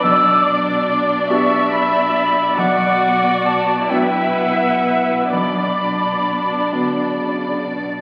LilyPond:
<<
  \new Staff \with { instrumentName = "Flute" } { \time 6/8 \key b \minor \tempo 4. = 45 e'''8 d'''8 r8 cis'''8 b''4 | fis''4 a''8 g''8 fis''4 | b''2~ b''8 r8 | }
  \new Staff \with { instrumentName = "Viola section" } { \time 6/8 \key b \minor d''4. e''4. | d''4. e''4. | d''2~ d''16 r8. | }
  \new Staff \with { instrumentName = "Violin section" } { \time 6/8 \key b \minor <d' d''>2. | <fis' d''>4. <e' b'>4. | <d' d''>2. | }
  \new Staff \with { instrumentName = "Grand piano" } { \time 6/8 \key b \minor b,,4. <b d' g'>4. | b,,4. <fis b d'>4. | b,,4. <b fis' d''>4. | }
  \new Staff \with { instrumentName = "Cello section" } { \clef bass \time 6/8 \key b \minor b,2. | b,2.~ | b,4. d8 cis8 b,8 | }
>>